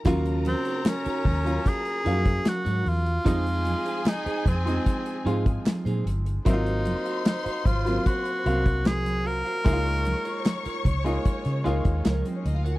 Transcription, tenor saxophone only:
X:1
M:4/4
L:1/8
Q:1/4=75
K:Ebdor
V:1 name="Tenor saxophone"
z C D2 A2 G F- | F2 E C2 z3 | E2 E F G2 A B- | B3 z4 z |]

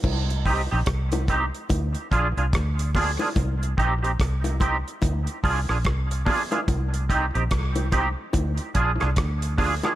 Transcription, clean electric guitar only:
X:1
M:4/4
L:1/16
Q:"Swing 16ths" 1/4=72
K:Cm
V:1 name="Clean electric guitar"
z2 [CEG] [CEG] z2 [CEG] z3 [DFA] [DFA] z2 [DFA] [DFA] | z2 [CEG] [CEG] z2 [CEG] z3 [DFA] [DFA] z2 [DFA] [DFA] | z2 [CEG] [CEG] z2 [CEG] z3 [DFA] [DFA] z2 [DFA] [DFA] |]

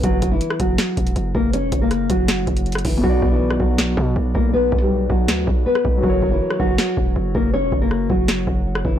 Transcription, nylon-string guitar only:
X:1
M:4/4
L:1/16
Q:1/4=160
K:F#phr
V:1 name="Nylon-string guitar"
[F,F]3 [E,E]3 [F,F]8 [^A,^A]2 | [Cc]3 [^A,^A]3 [F,F]8 [E,E]2 | [F,F]3 [E,E]3 [F,F]8 [^A,^A]2 | [B,B]3 [G,G]3 [F,F]6 [B,B]4 |
[F,F]3 [E,E]3 [F,F]8 [^A,^A]2 | [Cc]3 [^A,^A]3 [F,F]8 [E,E]2 |]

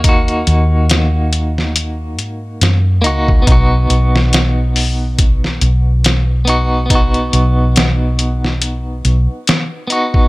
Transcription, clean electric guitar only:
X:1
M:4/4
L:1/8
Q:"Swing 16ths" 1/4=70
K:Bmix
V:1 name="Clean electric guitar"
[^A,DF]6- [A,DF] [A,DF] | [B,DF]6- [B,DF] [B,DF] | [B,DF]6- [B,DF] [B,DF] |]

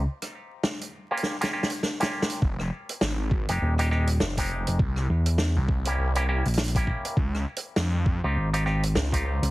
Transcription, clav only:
X:1
M:4/4
L:1/16
Q:"Swing 16ths" 1/4=101
K:Fm
V:1 name="Clav"
z6 z [B,DFG]2 [B,DFG] [B,DFG] z2 [B,DFG]3 | z6 z [A,CEG]2 [A,CEG] [A,CEG] z2 [A,CEG]3 | z6 z [B,D=EG]2 [B,DEG] [B,DEG] z2 [B,DEG]3 | z6 z [CEFG]2 [CEFG] [CEFG] z2 [CEFG]3 |]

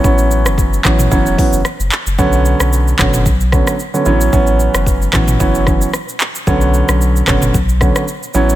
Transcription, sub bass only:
X:1
M:4/4
L:1/16
Q:"Swing 16ths" 1/4=112
K:Bm
V:1 name="Sub bass" clef=bass
A,,,3 F,,,3 A,,,2 F,,, E,,, z F,,, z F,,, z F,,, | B,,,3 B,,,3 F,,,2 B,,,3 z3 A,,,2 | A,,,3 F,,,3 A,,,2 F,,,4 z4 | B,,,3 B,,,3 F,,,2 B,,,3 z3 A,,,2 |]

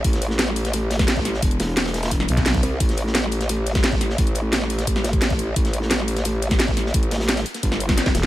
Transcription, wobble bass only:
X:1
M:4/4
L:1/8
Q:1/4=174
K:C
V:1 name="Wobble bass" clef=bass
A,,,8 | E,,,4- E,,, z2 C,, | A,,,8 | A,,,8 |
A,,,8 | A,,,3 z G,,,3 z |]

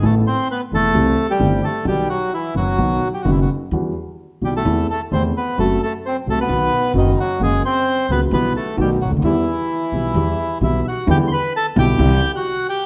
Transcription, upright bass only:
X:1
M:4/4
L:1/16
Q:1/4=130
K:Em
V:1 name="Upright bass" clef=bass
A,,,3/2 z4 z/2 E,,,3/2 z/2 C,,3/2 z2 z/2 G,,,3/2 z2 z/2 | B,,,3/2 z4 z/2 F,,,3/2 z/2 B,,,3/2 z2 z/2 F,,,3/2 z2 z/2 | E,,3/2 z4 z/2 B,,,3/2 z/2 E,,3/2 z2 z/2 E,,3/2 z2 z/2 | F,,,3/2 z4 z/2 C,,3/2 z/2 B,,,3/2 z2 z/2 F,,,3/2 z2 z/2 |
F,,,3/2 z4 z/2 ^C,,3/2 z/2 B,,,3/2 z2 z/2 B,,,3/2 z C,,/2 D,,/2 ^D,,/2 | E,,3/2 z4 z/2 B,,,3/2 z/2 E,,3/2 z2 z/2 B,,,3/2 z2 z/2 | E,,3/2 z4 z/2 B,,,3/2 z/2 C,,3/2 z6 z/2 |]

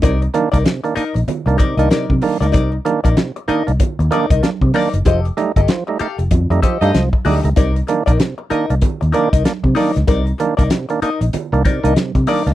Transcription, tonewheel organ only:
X:1
M:4/4
L:1/16
Q:"Swing 16ths" 1/4=96
K:Cdor
V:1 name="Tonewheel organ"
C, z [E,B,D] [B,D] C, [E,B,D] [B,D] z2 [E,B,D] C, [E,B,D] C, z [E,B,D] [B,D] | C, z [E,B,D] [B,D] C, z [E,B,D] [B,D] z2 [E,B,D] z [B,D] C, [E,B,D] z | F, z [G,A,E] [A,E] F, [G,A,E] [A,E] z2 [G,A,E] F, [G,A,E] F, z [G,A,E] [A,E] | C, z [E,B,D] [B,D] C, z [E,B,D] [B,D] z2 [E,B,D] z [B,D] C, [E,B,D] z |
C, z [E,B,D] [B,D] C, [E,B,D] [B,D] z2 [E,B,D] C, [E,B,D] C, z [E,B,D] [B,D] |]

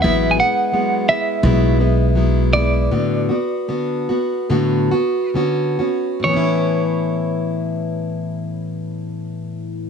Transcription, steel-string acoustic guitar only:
X:1
M:4/4
L:1/8
Q:1/4=73
K:A
V:1 name="Steel-string acoustic guitar"
[A,,F,G,B,E] [G,B,E] [F,G,B,E] [G,B,E] [A,,F,G,B,E] [G,B,E] [F,G,B,E] [G,B,E] | [A,,D,B,F] [B,F] [D,B,F] [B,F] [A,,D,B,F] [B,F] [D,B,CF] [B,CF] | [A,,E,B,CE]8 |]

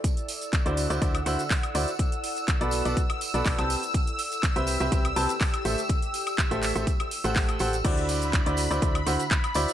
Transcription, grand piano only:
X:1
M:4/4
L:1/16
Q:1/4=123
K:Dmix
V:1 name="Grand piano"
z4 z [D,EFcd]2 [D,EFcd] [D,EFcd] z [D,EFcf] z3 [EFcd] z | z4 z [B,FABd]2 [B,FABd] z3 [B,FABd] [FA] [CGBca]2 z | z4 z [CGBce]2 [CGBce] [CGBce] z [CGBca] z3 [A,GAce] z | z4 z [A,GAce]2 [A,GAce] z3 [A,GAcf]3 [GAcf] z |
[D,EFcd]4- [D,EFcd] [D,EFcd]2 [D,EFcd] [D,EFcd] z [D,EFcf] z3 [EFcd] z |]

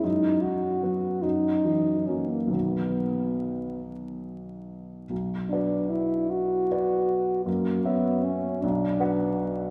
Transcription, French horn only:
X:1
M:6/8
L:1/16
Q:3/8=50
K:B
V:1 name="French horn"
D2 F4 D4 C A, | B,6 z6 | [K:Bm] z2 D2 E2 F6 | ^A,2 B,2 C2 D6 |]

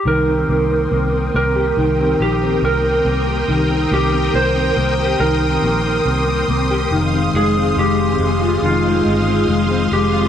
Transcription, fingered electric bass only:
X:1
M:4/4
L:1/8
Q:1/4=70
K:Cphr
V:1 name="Fingered electric bass" clef=bass
C,, C,, C,, C,, C,, B,,, C,, C,, | C,, C,, C,, C,, C,, B,,, C,, C,, | F,,, F,,, F,,, F,,, F,,, G,,, F,,, F,,, |]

